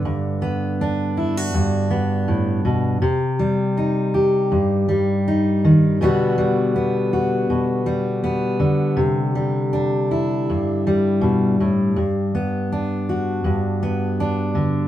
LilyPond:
\new Staff \with { instrumentName = "Steel-string acoustic guitar" } { \clef bass \time 4/4 \key g \major \tempo 4 = 81 << { r8 b8 d'8 e'16 fis'8. b4. | r8 g8 ees'8 g'4 g8 ees'4 | <d g b fis'>8 g8 b8 fis'4 g8 b4 | r8 g8 d'8 e'4 g4.~ |
g8 b8 d'8 fis'4 b8 d'4 | } \\ { <g, d>2 g,4 a,8 b,8 | c2 g,4. ees8 | b,2 b,4. d8 | c2 g,4 b,8 a,8 |
g,2 g,4. d8 | } >> }